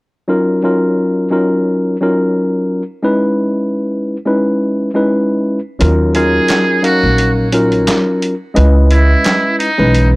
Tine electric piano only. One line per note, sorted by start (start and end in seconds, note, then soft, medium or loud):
0.28 0.60 F#3 medium
0.28 0.61 C#4 medium
0.28 0.61 D#4 medium
0.28 0.61 F4 medium
0.28 0.61 A#4 loud
0.63 1.27 F#3 medium
0.63 1.28 C#4 medium
0.63 1.28 D#4 medium
0.63 1.28 F4 medium
0.63 1.28 A#4 medium
1.30 1.95 F#3 medium
1.30 1.96 C#4 medium
1.30 1.96 D#4 medium
1.30 1.96 F4 medium
1.30 1.96 A#4 medium
2.01 2.81 F#3 medium
2.01 2.82 C#4 medium
2.01 2.82 D#4 medium
2.01 2.82 F4 medium
2.01 2.82 A#4 loud
3.03 4.16 G#3 medium
3.03 4.16 C#4 medium
3.03 4.16 D#4 medium
3.03 4.16 E4 medium
3.03 4.17 B4 loud
4.25 4.89 G#3 medium
4.25 4.90 C#4 medium
4.25 4.90 D#4 medium
4.25 4.90 E4 medium
4.25 4.90 B4 medium
4.94 5.58 G#3 medium
4.94 5.58 C#4 medium
4.94 5.59 D#4 medium
4.94 5.59 E4 medium
4.94 5.59 B4 loud
5.79 6.12 F#3 loud
5.79 6.12 C#4 medium
5.79 6.13 D#4 medium
5.79 6.13 F4 medium
5.79 6.13 A#4 loud
6.14 6.79 F#3 medium
6.14 6.79 C#4 medium
6.14 6.79 D#4 medium
6.14 6.80 F4 medium
6.14 6.80 A#4 loud
6.82 7.47 F#3 medium
6.82 7.47 C#4 medium
6.82 7.48 D#4 medium
6.82 7.48 A#4 loud
6.82 7.48 F5 medium
7.52 8.33 F#3 medium
7.52 8.33 C#4 medium
7.52 8.34 D#4 medium
7.52 8.34 F4 medium
7.52 8.34 A#4 loud
8.54 9.67 G#3 loud
8.54 9.68 C#4 medium
8.54 9.68 E4 medium
8.54 9.68 B4 loud
8.54 9.68 D#5 medium
9.78 10.16 E3 medium
9.78 10.16 G#3 medium
9.78 10.16 C#4 medium
9.78 10.16 D#4 medium
9.78 10.16 B4 medium